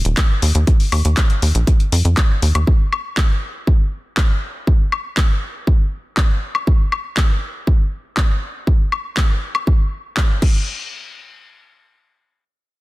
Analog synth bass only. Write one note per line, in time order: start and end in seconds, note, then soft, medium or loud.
0.05 0.15 D#1 medium
0.42 0.53 D#2 medium
0.55 0.65 D#2 medium
0.92 1.03 D#2 loud
1.05 1.15 D#2 medium
1.42 1.53 D#2 medium
1.55 1.65 A#1 medium
1.92 2.03 F2 medium
2.05 2.15 F2 medium
2.42 2.53 D#2 medium
2.55 2.65 D#2 medium